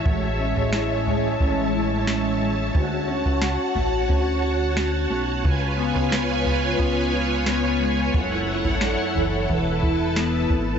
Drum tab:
SD |----o-------o---|----o-------o---|----o-------o---|----o-------o---|
FT |o--o--o-o-------|o--o--o-o-------|o--o--o-o-------|o--o--o-o-----o-|
BD |o-------o-------|o-------o-------|o-------o-------|o-------o-o---o-|